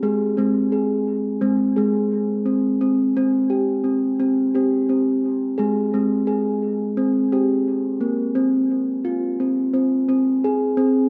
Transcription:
\new Staff \with { instrumentName = "Steel tongue drum" } { \time 4/4 \key f \dorian \tempo 4 = 86 << { aes'8 c'8 aes'4 c'8 aes'4 c'8 | c'4 g'8 c'4 g'8 c'4 | aes'8 c'8 aes'4 r8 g'4 bes8 | r4 f'8 c'4 r8 aes'8 r8 | } \\ { aes8 aes4. aes16 r16 aes4. | r8 c'4. c'16 r16 c'4. | aes8 aes4. c'16 r16 c'4. | c'2 c'8 c'8 r8 c'8 | } >> }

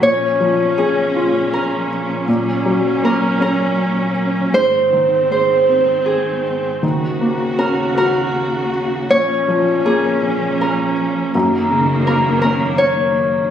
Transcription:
<<
  \new Staff \with { instrumentName = "Harp" } { \time 3/4 \key bes \minor \tempo 4 = 80 des''4 aes'4 bes'8. r16 | r4 bes'8 bes'4. | c''4 c''4 aes'8. r16 | r4 bes'8 bes'4. |
des''4 aes'4 bes'8. r16 | r4 bes'8 bes'8 des''4 | }
  \new Staff \with { instrumentName = "Felt piano" } { \time 3/4 \key bes \minor bes,8 f8 des'8 f'4. | bes,8 ges8 bes8 des'4. | aes,8 ees8 aes8 c'4. | ees8 bes8 des'8 ges'4. |
bes,8 f8 bes8 des'4. | ges,8 des8 bes8 des'4. | }
  \new Staff \with { instrumentName = "String section" } { \clef bass \time 3/4 \key bes \minor <bes, f des'>2. | <ges des'>2. | <aes, ees c'>2. | <ees, des ges'>2. |
<bes, f des'>2. | <ges, ees bes>2. | }
>>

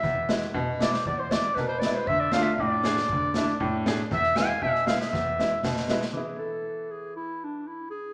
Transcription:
<<
  \new Staff \with { instrumentName = "Cor anglais" } { \time 4/4 \tempo 4 = 118 e''8 r4 d''8 d''16 c''16 d''8 b'4 | e''8 f''8 d''2~ d''8 r8 | e''8 gis''8 e''8 f''16 e''4. r8. | r1 | }
  \new Staff \with { instrumentName = "Clarinet" } { \time 4/4 e''8 r4 d''16 c''16 d''16 c''16 d''8 b'16 c''16 d''16 c''16 | e''16 d''16 f''16 e''16 d''2~ d''8 r8 | e''8 gis''16 f''16 e''8 f''16 e''4. r8. | gis'8 a'4 gis'8 e'8 d'8 e'8 gis'8 | }
  \new Staff \with { instrumentName = "Upright piano" } { \time 4/4 << { r8 <gis b e'>16 r8. <gis b e'>16 r8. <gis b e'>16 r8. <gis b e'>16 r16 | r8 <a d' f'>16 r8. <a d' gis'>16 r8. <a d' e'>16 r8. <a d' gis'>16 r16 | r8 <gis b e'>16 r8. <gis b e'>16 r8. <gis b e'>16 r8. <gis b e'>16 r16 | <e b e'>1 | } \\ { e,4 b,4 e,4 b,4 | d,4 a,4 d,4 a,4 | e,4 b,4 e,4 b,4 | r1 | } >> }
  \new DrumStaff \with { instrumentName = "Drums" } \drummode { \time 4/4 <bd sn>8 sn16 sn16 bd8 sn16 sn16 bd8 sn8 <bd sn>8 sn8 | bd8 sn8 bd8 sn16 sn16 bd8 sn16 sn16 bd8 sn8 | <bd sn>16 sn16 sn8 bd16 sn16 sn16 sn16 <bd sn>8 sn8 <bd sn>16 sn16 sn16 sn16 | r4 r4 r4 r4 | }
>>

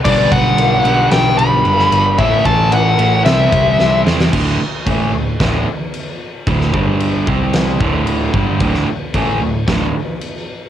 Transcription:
<<
  \new Staff \with { instrumentName = "Lead electric guitar" } { \time 4/4 \key d \mixolydian \tempo 4 = 112 d''8 fis''4. g''8 b''4. | e''8 a''8 fis''4 e''4. r8 | r1 | r1 |
r1 | }
  \new Staff \with { instrumentName = "Distorted electric guitar" } { \clef bass \time 4/4 \key d \mixolydian <g, d g>2 <g, d g>2 | <a, e a>2 <c g c'>2 | r1 | r1 |
r1 | }
  \new Staff \with { instrumentName = "Overdriven electric guitar" } { \clef bass \time 4/4 \key d \mixolydian <g, d g>4. <g, d g>4. <g, d g>4 | <a, e a>4. <a, e a>8 <c g c'>4. <c g c'>8 | <d, a, d>8 r8 <a, e a>8 <d, a,>8 <d, a, d>8 r4. | <d, a, d>8 <g, d g>4 <c g c'>4 <d, a, d>4 <g, d g>8 |
<d, a, d>8 r8 <a, e a>8 <d, a,>8 <d, a, d>8 r4. | }
  \new Staff \with { instrumentName = "Distorted electric guitar" } { \clef bass \time 4/4 \key d \mixolydian <g, d g>1 | <a, e a>2 <c g c'>2 | <d, a, d>8 r8 <a, e a>8 <d, a,>8 <d, a, d>8 r4. | <d, a, d>8 <g, d g>4 <c g c'>4 <d, a, d>4 <g, d g>8 |
<d, a, d>8 r8 <a, e a>8 <d, a,>8 <d, a, d>8 r4. | }
  \new Staff \with { instrumentName = "Picked electric bass" } { \clef bass \time 4/4 \key d \mixolydian b,,8 b,,8 b,,8 b,,8 b,,8 b,,8 fis,,8 g,,8 | a,,8 a,,8 a,,8 a,,8 c,8 c,8 c,8 e,8 | d,,8 r8 a,,8 d,,8 d,,8 r4. | d,,8 g,,4 c,4 d,,4 g,,8 |
d,,8 r8 a,,8 d,,8 d,,8 r4. | }
  \new DrumStaff \with { instrumentName = "Drums" } \drummode { \time 4/4 <cymc bd>8 <bd cymr>8 cymr8 cymr8 <cymr sn>8 cymr8 cymr16 sn16 cymr8 | <bd cymr>8 <bd cymr>8 cymr8 cymr8 <cymr sn>8 <bd cymr>8 sn8 sn16 sn16 | <cymc bd>4 <cymc bd>4 <cymc bd sn>4 cymc4 | <cymc bd>16 sn16 bd8 cymc8 bd8 <cymc sn>8 bd8 cymc8 bd8 |
<cymc bd>16 sn8. <cymc bd>4 <cymc bd sn>4 cymc4 | }
>>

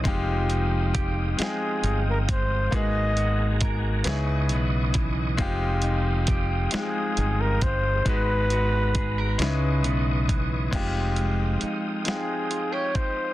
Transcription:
<<
  \new Staff \with { instrumentName = "Tonewheel organ" } { \time 6/8 \key f \minor \tempo 4. = 45 <f'' g'' ees'''>2. | <ges'' aes'' bes''>4. <ees'' des''' ees'''>4. | <f'' g'' ees'''>2. | <ges'' bes'' ces'''>4. <ees'' des''' ees'''>4. |
<f'' g'' ees'''>2. | }
  \new Staff \with { instrumentName = "Tonewheel organ" } { \clef bass \time 6/8 \key f \minor aes2.~ | aes4. ces''4. | aes2.~ | aes4. ces''4. |
aes2. | }
  \new Staff \with { instrumentName = "Flugelhorn" } { \time 6/8 \key f \minor r4. aes'8. bes'16 c''8 | ees''4 r2 | r4. aes'8. bes'16 c''8 | ces''2 r4 |
r4. aes'8. des''16 c''8 | }
  \new Staff \with { instrumentName = "Grand piano" } { \time 6/8 \key f \minor <aes c' ees' f' g'>4 r8 <aes c' ees' f' g''>4 r8 | <bes ces' ees' ges' aes'>4 r8 <ces' des' ees' fes' aes'>4 r8 | <aes c' ees' f' g'>4 r8 <aes c' ees' f' g''>4 r8 | <aes ces' ees' ges' ces''>4 r8 <aes des' ees' fes' ces''>4 r8 |
<aes c' ees' f' g'>4 r8 <aes c' ees' f' g''>4 r8 | }
  \new Staff \with { instrumentName = "Clean electric guitar" } { \time 6/8 \key f \minor f8 ees'8 g'8 aes8 ees'8 aes8 | aes8 ges'8 bes'8 des8 ces'8 fes8 | f8 ees'8 g'8 aes8 ees'8 aes8 | aes8 ges'8 aes'16 bes'16 des8 ces'8 fes8 |
f8 aes8 ees'8 aes8 f'16 g'16 ees'8 | }
  \new Staff \with { instrumentName = "Fretless electric bass" } { \clef bass \time 6/8 \key f \minor f,,4. r8 g,,4 | aes,,4. des,8 ces,4 | f,,4. r8 g,,4 | aes,,4. des,8 ces,4 |
f,,4 r2 | }
  \new DrumStaff \with { instrumentName = "Drums" } \drummode { \time 6/8 <hh bd>8 hh8 <hh bd>8 <hh sn>8 hh8 <hh bd>8 | <hh bd>8 hh8 <hh bd>8 <hh sn>8 hh8 <hh bd>8 | <hh bd>8 hh8 <hh bd>8 <hh sn>8 hh8 <hh bd>8 | <hh bd>8 hh8 <hh bd>8 <hh sn>8 hh8 <hh bd>8 |
<cymc hh bd>8 hh8 hh8 <hh sn>8 hh8 <hh bd>8 | }
>>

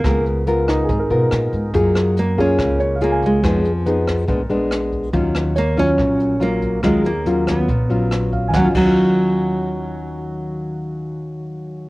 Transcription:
<<
  \new Staff \with { instrumentName = "Grand piano" } { \time 4/4 \key ees \minor \tempo 4 = 141 << { aes'4. ees'16 aes'16 bes'2~ | bes'4 r4. des''16 f''16 aes''4~ | aes''4 r2. | r4 des''2.~ |
des''16 r2. r16 f''16 aes''16~ | aes''8. r2. r16 | r1 | } \\ { r1 | r1 | r1 | r1 |
r1 | ges''8 ges'2.~ ges'8~ | ges'1 | } >> }
  \new Staff \with { instrumentName = "Nylon-string guitar" } { \time 4/4 \key ees \minor << { <ces' f' bes'>4 <ces' f' bes'>4 r8 <ces' f' bes'>4. | <bes f' aes'>4 r8 <bes f' aes'>4. <bes f' aes'>4 | <ces' ees' aes'>8 r8 <ces' ees' aes'>4 <aes ces' d'>8 <aes ces' d'>4. | <ges des' f'>4 r8 <ges des' f'>4. <ges des' f'>4 |
<ges des' f'>8 r8 <ges des' f'>4 r8 <ges des' f'>4. | <ees ges des' f'>8 <ees ges des' f'>2.~ <ees ges des' f'>8~ | <ees ges des' f'>1 | } \\ { des2 aes,2 | ges2 des2 | f2 bes,2 | ees2 bes,2 |
ees2 bes,2 | r1 | r1 | } >> }
  \new Staff \with { instrumentName = "Nylon-string guitar" } { \time 4/4 \key ees \minor bes8 r2. r8 | r4 bes8 des'4 r8 bes8 aes8~ | aes8 r2. r8 | r4 bes8 des'4. bes4 |
aes8 bes4 ces'2 r8 | ges8 ges2.~ ges8~ | ges1 | }
  \new Staff \with { instrumentName = "Upright bass" } { \clef bass \time 4/4 \key ees \minor des,2 aes,,8 ces8 bes,8 aes,8 | ges,2 des,2 | f,2 bes,,2 | ees,2 bes,,2 |
ees,2 bes,,2 | ees,8 ees,2.~ ees,8~ | ees,1 | }
  \new DrumStaff \with { instrumentName = "Drums" } \drummode { \time 4/4 <hh bd ss>8 hh8 hh8 <hh bd ss>8 <hh bd>8 hh8 <hh ss>8 <hh bd>8 | <hh bd>8 <hh ss>8 hh8 <hh bd>8 <hh bd ss>8 hh8 hh8 <hh bd>8 | <hh bd ss>8 hh8 hh8 <hh bd ss>8 <hh bd>8 hh8 <hh ss>8 <hh bd>8 | <hh bd>8 <hh ss>8 hh8 <hh bd>8 <hh bd ss>8 hh8 hh8 <hh bd>8 |
<hh bd ss>8 hh8 hh8 <hh bd ss>8 <hh bd>8 hh8 <hh ss>8 <hh bd>8 | <bd sn>8 <cymc bd>8 r4 r4 r4 | r4 r4 r4 r4 | }
>>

